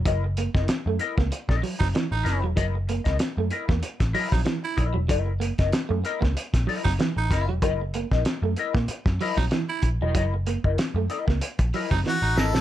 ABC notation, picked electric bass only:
X:1
M:4/4
L:1/16
Q:"Swing 16ths" 1/4=95
K:F#mix
V:1 name="Picked electric bass" clef=bass
F,,,3 F,,, z F,, z C,, z A,,, z F,,, z =A,,, F,,, E,,, | F,,,3 C,, z F,, z E,, z =A,,, z ^A,,, z2 A,,, E,,, | F,,,3 F,,, z F,, z C,, z A,,, z F,,, z =A,,, F,,, E,,, | F,,,3 A,,, z F,, z A,, z F,, z A,,, z2 A,,, E,,, |
F,,,3 F,,, z F,, z C,, z A,,, z F,,, z =A,,, G,,, ^A,,, |]